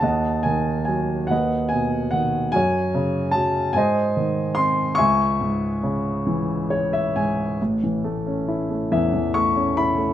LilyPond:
<<
  \new Staff \with { instrumentName = "Grand piano" } { \time 6/8 \key cis \minor \tempo 4. = 47 << { a''8 gis''8 gis''8 fis''8 gis''8 fis''8 | gis''4 a''8 gis''4 bis''8 | cis'''2 cis''16 e''16 gis''8 | \key a \lydian r4. e''8 cis'''8 b''8 | } \\ { <dis'' fis''>4. <b' dis''>4. | cis''4. <bis' dis''>4. | <e'' gis''>2 r4 | r2. | } >> }
  \new Staff \with { instrumentName = "Grand piano" } { \clef bass \time 6/8 \key cis \minor dis,8 dis8 fis8 dis,8 b,8 dis8 | fis,8 cis8 fis8 gis,8 dis8 bis8 | cis,8 gis,8 cis8 e4 gis,8 | \key a \lydian <a,, a,>16 e16 a16 cis'16 e'16 a16 <e, e>16 e16 a16 cis'16 e'16 a16 | }
>>